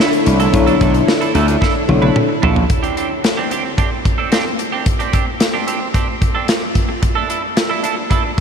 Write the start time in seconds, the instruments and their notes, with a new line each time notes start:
Already playing: string machine D3 A3 E4 C#5, fm electric piano D4 E4 A4 C#5
0.00 clean electric guitar D4 E4 A4, snare
0.13 muted clean electric guitar stroke, closed hi-hat
0.26 slap bass C2, muted clean electric guitar stroke, closed hi-hat
0.40 clean electric guitar D4 E4 A4, closed hi-hat
0.53 slap bass B1, fm electric piano D4 E4 A4 C#5, muted clean electric guitar stroke, kick, closed hi-hat
0.67 clean electric guitar D4 E4 A4, closed hi-hat
0.80 slap bass B1, clean electric guitar D4 E4 A4, kick, closed hi-hat
0.94 muted clean electric guitar stroke, closed hi-hat
1.07 muted clean electric guitar stroke, snare
1.21 clean electric guitar D4 E4 A4, closed hi-hat
1.34 slap bass D2, clean electric guitar D4 E4 A4, closed hi-hat
1.48 muted clean electric guitar stroke, closed hi-hat
1.61 clean electric guitar D4 E4 A4, kick, snare
1.75 muted clean electric guitar stroke
1.88 slap bass B1, fm electric piano D4 E4 A4 C#5, muted clean electric guitar stroke, high tom
2.02 clean electric guitar D4 E4 B4, high tom
2.16 mid tom
2.29 muted clean electric guitar stroke
2.42 slap bass A#1, clean electric guitar D4 E4 A4, floor tom
2.56 muted clean electric guitar stroke, floor tom
2.70 muted clean electric guitar stroke, kick, closed hi-hat
2.83 clean electric guitar C4 D4 G4, closed hi-hat
2.97 clean electric guitar C4 D4 G4, closed hi-hat
3.10 muted clean electric guitar stroke
3.24 muted clean electric guitar stroke, snare, closed hi-hat
3.37 clean electric guitar C4 D4 G4
3.51 clean electric guitar C4 D4 G4, closed hi-hat
3.65 muted clean electric guitar stroke
3.78 clean electric guitar C4 D4 G4, kick, closed hi-hat
3.91 muted clean electric guitar stroke
4.05 muted clean electric guitar stroke, kick, closed hi-hat
4.18 clean electric guitar C4 D4 A4
4.31 clean electric guitar C4 D4 G4, snare, closed hi-hat
4.45 muted clean electric guitar stroke
4.59 muted clean electric guitar stroke, closed hi-hat
4.72 clean electric guitar C4 D4 G4
4.86 muted clean electric guitar stroke, kick, closed hi-hat
4.99 clean electric guitar C4 D4 G4, closed hi-hat
5.13 clean electric guitar C4 D4 G4, kick, closed hi-hat
5.26 muted clean electric guitar stroke
5.40 muted clean electric guitar stroke, snare, closed hi-hat
5.54 clean electric guitar C4 D4 G4
5.67 clean electric guitar C4 D4 G4, closed hi-hat
5.81 muted clean electric guitar stroke
5.94 clean electric guitar C4 D4 G4, kick, closed hi-hat
6.08 muted clean electric guitar stroke
6.21 muted clean electric guitar stroke, kick, closed hi-hat
6.35 clean electric guitar C4 D4 A4
6.48 muted clean electric guitar stroke, snare, closed hi-hat
6.62 muted clean electric guitar stroke
6.75 kick, closed hi-hat
6.89 muted clean electric guitar stroke
7.02 muted clean electric guitar stroke, kick, closed hi-hat
7.15 clean electric guitar D4 E4 A4
7.29 clean electric guitar D4 E4 A4, closed hi-hat
7.43 muted clean electric guitar stroke
7.56 muted clean electric guitar stroke, snare, closed hi-hat
7.69 clean electric guitar D4 E4 A4
7.83 clean electric guitar D4 E4 A4, closed hi-hat
7.97 muted clean electric guitar stroke
8.10 clean electric guitar D4 E4 A4, kick, closed hi-hat
8.24 muted clean electric guitar stroke
8.37 muted clean electric guitar stroke